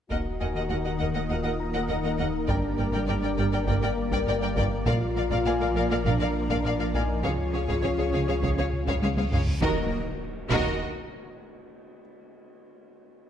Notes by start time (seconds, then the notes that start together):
0.10 D#1 D#2 D#3 A#3 F#4 A#4 D#5 F#5, taiko
0.40 D#2 A#4 D#5 F#5 G#5
0.55 D#2 A#4 D#5 F#5
0.70 D#2 A#4 D#5 F#5
0.85 D#2 A#4 D#5 F#5
0.99 D#2 A#4 D#5 F#5
1.14 D#2 A#4 D#5 F#5
1.29 D#2 F4 A#4 D#5 F#5
1.43 D#2 A#4 D#5 F#5
1.59 A#5
1.74 D#2 A#4 D#5 F#5
1.89 D#2 D#4 A#4 D#5 F#5
2.03 D#2 A#4 D#5 F#5
2.18 D#2 A#4 D#5 F#5
2.48 G1 G2 G3 D4 A#4 D5 G5 A#5, taiko
2.78 G1 G2 A#4 D5 G5
2.93 G2 A#4 D5 G5, taiko
3.08 G1 G2 A#4 D5 G5
3.22 G2 A#4 D5 G5
3.37 G1 G2 A#4 D5 G5
3.52 G2 A#4 D5 G5
3.67 G1 G2 A#3 A#4 D5 G5, taiko
3.82 G2 A#4 D5 G5
4.11 G2 A#4 D5 G5, taiko
4.26 G1 G2 A#4 D5 G5
4.41 G2 A#4 D5 G5
4.56 G1 G2 A#4 D5 G5, taiko
4.86 A#1 A#2 F3 A#3 F4 A#4 D5 F5, taiko
5.16 A#1 A#2 A#4 D5 F5
5.31 A#2 A#4 D5 F5, taiko
5.46 A#1 A#2 A#4 D5 F5 G#5
5.60 A#2 A#4 D5 F5
5.75 A#1 A#2 A#4 D5 F5
5.91 A#2 A#4 D5 F5
6.05 A#1 A#2 D4 A#4 D5 F5, taiko
6.20 A#2 A#4 D5 F5
6.50 A#2 A#4 D5 F5, taiko
6.64 A#1 A#2 A#4 D5 F5
6.79 A#2 A#4 D5 F5
6.94 A#1 A#2 D#4 A#4 D5 F5 G#5, taiko
7.24 C#2 C#3 C#4 F4 G#4 C#5 F5, taiko, reverse cymbal
7.53 C#2 C#3 G#4 C#5 F5
7.68 C#3 G#4 C#5 F5, taiko
7.83 C#2 C#3 G#4 C#5 F5
7.97 C#3 G#4 C#5 F5
8.12 C#2 C#3 G#4 C#5 F5
8.27 C#3 G#4 C#5 F5
8.42 C#2 C#3 G#4 C#5 F5, taiko
8.57 C#3 G#4 C#5 F5
8.73 taiko mid
8.87 C#3 G#4 C#5 F5, taiko
9.01 C#2 C#3 G#4 C#5 F5, taiko high
9.16 C#3 G#4 C#5 F5, taiko high
9.32 C#2 C#3 G#4 C#5 F5, taiko low-mid
9.47 taiko low
9.61 D#1 D#2 D#3 F#3 A#3 D#4 F#4 A#4 D#5, taiko, impact
10.50 D#1 D#2 D#3 F#4 A#4 D#5, taiko